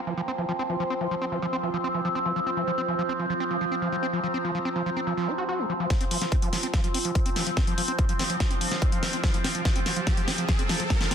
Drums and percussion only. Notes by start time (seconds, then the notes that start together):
5.90 kick, snare, closed hi-hat
6.01 closed hi-hat
6.11 open hi-hat
6.21 snare, closed hi-hat
6.32 kick, closed hi-hat
6.42 closed hi-hat
6.53 snare, open hi-hat
6.63 closed hi-hat
6.74 kick, snare, closed hi-hat
6.84 closed hi-hat
6.94 open hi-hat
7.05 closed hi-hat
7.15 kick, closed hi-hat
7.26 closed hi-hat
7.36 snare, open hi-hat
7.47 closed hi-hat
7.57 kick, snare, closed hi-hat
7.67 closed hi-hat
7.78 open hi-hat
7.88 closed hi-hat
7.99 kick, closed hi-hat
8.09 closed hi-hat
8.19 snare, open hi-hat
8.30 closed hi-hat
8.40 kick, snare, closed hi-hat
8.51 closed hi-hat
8.61 open hi-hat
8.71 snare, closed hi-hat
8.82 kick, closed hi-hat
8.92 closed hi-hat
9.03 snare, open hi-hat
9.13 closed hi-hat
9.24 kick, snare, closed hi-hat
9.34 closed hi-hat
9.44 snare, open hi-hat
9.55 closed hi-hat
9.65 kick, snare, closed hi-hat
9.76 closed hi-hat
9.86 snare, open hi-hat
9.96 closed hi-hat
10.07 kick, snare, closed hi-hat
10.17 closed hi-hat
10.28 snare, open hi-hat
10.38 closed hi-hat
10.49 kick, snare, closed hi-hat
10.59 closed hi-hat
10.69 snare, open hi-hat
10.80 closed hi-hat
10.90 kick, snare, closed hi-hat
11.01 snare, closed hi-hat
11.11 snare, open hi-hat